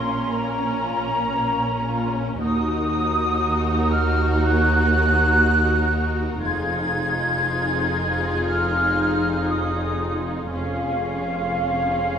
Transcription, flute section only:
0.00 0.34 C6 loud
0.33 2.13 A#5 loud
2.41 3.88 D#6 loud
3.91 4.40 F6 medium
4.42 6.13 F#6 loud
6.40 8.40 G#6 loud
8.43 9.48 F6 loud
9.48 10.21 D#6 medium
10.51 12.19 F5 medium

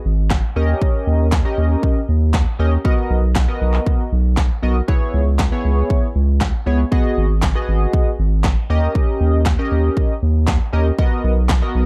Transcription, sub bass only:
0.05 0.42 G#1 medium
0.56 0.74 D#2 medium
1.07 1.44 D#2 medium
1.58 1.76 D#2 medium
2.09 2.45 D#2 medium
2.59 2.78 D#2 medium
3.10 3.47 B1 loud
3.61 3.80 B1 medium
4.12 4.49 B1 medium
4.63 4.81 B1 medium
5.14 5.51 C#2 loud
5.65 5.83 C#2 medium
6.15 6.52 C#2 medium
6.66 6.85 C#2 medium
7.17 7.54 G#1 loud
7.68 7.86 G#1 medium
8.19 8.56 G#1 medium
8.70 8.88 D#2 medium
9.20 9.57 D#2 loud
9.72 9.90 D#2 medium
10.22 10.59 D#2 medium
10.73 10.92 D#2 medium
11.24 11.61 B1 loud
11.75 11.86 B1 medium

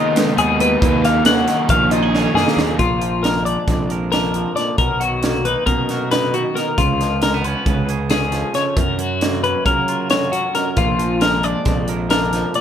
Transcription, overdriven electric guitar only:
0.00 0.79 D#2 medium
0.00 0.14 G#2 medium
0.00 0.15 D#3 medium
0.00 0.16 G#3 medium
0.00 0.15 B3 medium
0.00 0.14 D#4 medium
0.16 0.80 G#2 medium
0.16 0.80 D#3 medium
0.16 0.81 G#3 medium
0.16 0.81 B3 medium
0.16 0.82 D#4 medium
0.80 1.89 D#2 medium
0.80 1.90 A#2 loud
0.80 1.90 D#3 loud
0.80 1.90 F#3 loud
0.80 1.90 A#3 medium
0.80 1.91 D#4 loud
1.90 2.11 D#2 medium
1.90 2.12 A#2 medium
1.90 2.12 D#3 medium
1.90 2.12 F#3 medium
1.90 2.12 A#3 medium
1.90 2.11 D#4 medium
2.12 2.79 D#2 medium
2.12 2.79 A#2 medium
2.12 2.78 D#3 medium
2.12 2.78 F#3 medium
2.12 2.78 A#3 medium
2.12 2.77 D#4 medium

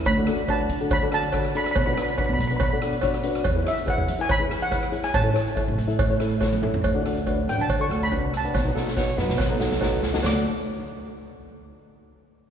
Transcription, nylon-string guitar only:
0.18 0.24 D4 medium
0.18 0.24 F#4 medium
0.18 0.24 A4 medium
0.27 0.41 D4 medium
0.27 0.40 F#4 medium
0.27 0.41 A4 medium
0.49 0.68 D4 medium
0.49 0.68 F#4 medium
0.49 0.68 B4 medium
0.80 0.93 D4 medium
0.80 0.93 F#4 medium
0.80 0.93 A4 medium
1.02 1.08 D4 medium
1.02 1.08 F#4 medium
1.02 1.08 A4 medium
1.12 1.25 D4 medium
1.12 1.25 F#4 medium
1.12 1.25 A4 medium
1.33 1.46 D4 medium
1.33 1.46 F#4 medium
1.33 1.46 A4 medium
1.54 1.74 D4 medium
1.54 1.74 F#4 medium
1.54 1.74 A4 medium
1.87 1.93 D4 medium
1.87 1.93 F#4 medium
1.87 1.93 B4 medium
1.96 2.10 D4 medium
1.96 2.10 F#4 medium
1.96 2.10 B4 medium
2.18 2.37 D4 medium
2.18 2.38 F#4 medium
2.18 2.38 B4 medium
2.50 2.63 D4 medium
2.50 2.63 F#4 medium
2.50 2.63 B4 medium
2.72 2.78 D4 medium
2.72 2.78 F#4 medium
2.72 2.78 A4 medium
2.82 2.95 D4 medium
2.82 2.95 F#4 medium
2.82 2.95 A4 medium
3.03 3.16 D4 medium
3.03 3.16 F#4 medium
3.03 3.16 C#5 medium
3.24 3.43 D4 medium
3.24 3.43 F#4 medium
3.24 3.43 B4 medium
3.55 3.62 E4 medium
3.55 3.62 G#4 medium
3.55 3.62 B4 medium
3.64 3.78 E4 medium
3.64 3.79 G#4 medium
3.64 3.79 C#5 medium
3.86 4.06 E4 medium
3.86 4.06 G#4 medium
3.86 4.06 B4 medium
4.18 4.32 E4 medium
4.18 4.32 G#4 medium
4.18 4.32 B4 medium
4.38 4.46 E4 medium
4.38 4.46 G#4 medium
4.38 4.46 B4 medium
4.49 4.63 E4 medium
4.49 4.63 G#4 medium
4.49 4.63 B4 medium
4.71 4.85 E4 medium
4.71 4.85 G#4 medium
4.71 4.85 B4 medium
4.92 5.12 E4 medium
4.92 5.12 G#4 medium
4.92 5.12 C#5 medium
5.23 5.31 E4 medium
5.23 5.31 A4 medium
5.23 5.31 C#5 medium
5.33 5.48 E4 medium
5.33 5.48 A4 medium
5.33 5.48 C#5 medium
5.55 5.75 E4 medium
5.55 5.75 A4 medium
5.55 5.75 E5 medium
5.87 6.01 E4 medium
5.87 6.01 A4 medium
5.87 6.01 E5 loud
6.10 6.16 E4 medium
6.10 6.16 A4 medium
6.10 6.16 C#5 loud
6.20 6.33 E4 medium
6.20 6.34 A4 medium
6.20 6.34 C#5 medium
6.20 6.40 E5 medium
6.40 6.54 E4 medium
6.40 6.54 A4 medium
6.40 6.55 C#5 medium
6.62 6.82 E4 medium
6.62 6.82 A4 medium
6.62 6.83 C#5 medium
6.62 6.82 E5 medium
6.94 7.01 D4 medium
6.94 7.01 F#4 medium
6.94 7.01 A4 medium
7.05 7.19 D4 medium
7.05 7.19 F#4 medium
7.05 7.19 A4 medium
7.27 7.40 D4 medium
7.27 7.40 F#4 medium
7.27 7.40 B4 medium
7.48 7.67 D4 medium
7.48 7.67 F#4 medium
7.48 7.67 B4 medium
7.79 7.86 D4 medium
7.79 7.86 F#4 medium
7.79 7.86 A4 medium
7.90 8.03 D4 medium
7.90 8.03 F#4 medium
7.90 8.04 A4 medium
8.11 8.31 D4 medium
8.11 8.31 F#4 medium
8.11 8.31 B4 medium
8.44 8.54 D4 medium
8.44 8.54 F#4 medium
8.44 8.54 B4 medium
8.64 8.71 D#4 medium
8.64 8.71 F#4 medium
8.64 8.71 B4 medium
8.75 8.88 D#4 medium
8.75 8.88 F#4 medium
8.75 8.88 A4 medium
8.96 9.10 D#4 medium
8.96 9.10 F#4 medium
8.96 9.10 B4 medium
9.17 9.37 D#4 loud
9.17 9.37 F#4 medium
9.17 9.37 B4 loud
9.49 9.56 D#4 medium
9.49 9.56 F#4 medium
9.49 9.56 B4 loud
9.59 9.73 D#4 medium
9.59 9.73 F#4 medium
9.59 9.73 A4 medium
9.81 10.01 D#4 medium
9.81 10.01 F#4 medium
9.81 10.01 B4 medium
10.13 10.23 D#4 loud
10.13 10.23 F#4 medium
10.13 10.23 A4 loud
10.24 10.44 D4 medium
10.24 10.44 F#4 medium
10.24 10.44 A4 medium

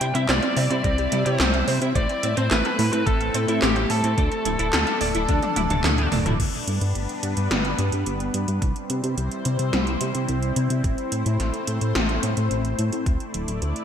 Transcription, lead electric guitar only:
0.00 0.16 G5 loud
0.15 0.29 E5 medium
0.29 0.69 D5 loud
0.70 1.22 D5 loud
1.26 1.78 C5 loud
1.96 2.34 D5 loud
2.37 2.51 C5 medium
2.51 2.92 B4 loud
2.93 3.06 B4 loud
3.07 3.58 A4 loud
3.62 3.91 G4 medium
3.90 6.08 A4 medium

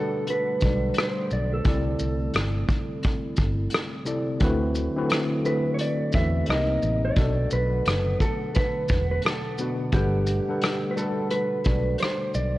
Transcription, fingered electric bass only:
0.63 0.91 B1 loud
1.32 1.60 B1 medium
1.65 1.93 C2 loud
2.00 2.28 C2 medium
2.34 2.63 G1 medium
3.39 3.66 G1 medium
4.41 4.87 D2 loud
6.14 6.42 E2 medium
6.48 6.76 C2 medium
6.83 7.11 A1 medium
7.17 7.45 B1 loud
7.52 7.80 B1 medium
7.87 8.15 F#1 loud
8.90 9.18 E1 medium
9.93 10.39 G1 loud
11.66 11.94 B1 loud
12.35 12.58 B1 medium

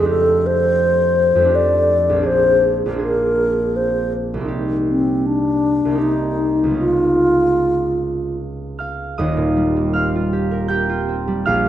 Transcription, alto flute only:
0.09 0.48 A4 medium
0.46 1.56 C5 medium
1.55 2.28 D5 medium
2.26 2.75 C5 medium
3.02 3.78 A#4 medium
3.76 4.13 C5 medium
4.88 5.28 C4 soft
5.26 6.03 D4 medium
6.02 6.78 D#4 medium
6.78 8.36 F4 medium

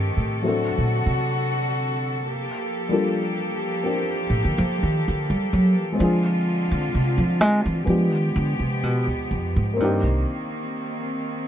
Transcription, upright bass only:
0.00 0.14 G2 medium
0.17 0.73 A2 medium
0.78 1.06 A#2 medium
1.06 2.45 C3 medium
4.30 4.42 A2 medium
4.45 4.58 D3 medium
4.58 4.81 F3 medium
4.83 5.01 D#3 medium
5.08 5.29 D3 medium
5.30 5.52 G3 medium
5.53 5.78 F#3 medium
5.78 5.95 E3 medium
6.00 6.71 F3 medium
6.71 6.89 D3 medium
6.95 7.17 C3 medium
7.18 7.41 F3 medium
7.41 7.63 G#3 medium
7.66 7.83 E3 medium
7.87 8.12 F3 medium
8.12 8.35 D#3 medium
8.36 8.58 D3 medium
8.60 8.83 C3 medium
8.83 9.06 B2 medium
9.07 9.30 D2 soft
9.31 9.53 F2 medium
9.56 9.80 G#2 medium
9.80 10.02 G2 medium
10.03 10.24 C2 medium

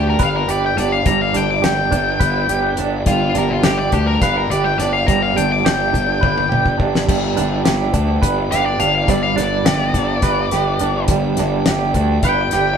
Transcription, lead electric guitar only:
0.09 0.21 A#4 medium
0.23 0.35 F5 medium
0.36 0.49 A#4 medium
0.50 0.63 D5 medium
0.66 0.78 G5 medium
0.77 0.92 D5 medium
0.92 1.06 F5 medium
1.06 1.20 A#5 medium
1.21 1.37 F5 medium
1.37 1.50 G5 medium
1.50 1.64 D6 medium
1.64 2.75 G5 loud
3.07 3.35 F4 loud
3.38 3.51 A#4 medium
3.50 3.63 F4 medium
3.63 3.78 G4 medium
3.78 3.92 D5 medium
3.93 4.07 G4 medium
4.07 4.21 A#4 medium
4.22 4.36 F5 medium
4.37 4.50 A#4 medium
4.50 4.64 D5 medium
4.64 4.79 G5 medium
4.78 4.93 D5 medium
4.93 5.07 F5 medium
5.07 5.21 A#5 medium
5.22 5.36 F5 medium
5.36 5.50 G5 medium
5.52 5.65 D6 medium
5.65 6.77 G5 medium
8.52 8.65 F5 loud
8.66 8.80 D5 medium
8.80 8.94 F5 medium
8.95 9.10 F5 medium
9.10 9.23 D5 medium
9.23 9.36 F5 medium
9.36 11.05 D5 loud
12.24 12.77 G5 medium

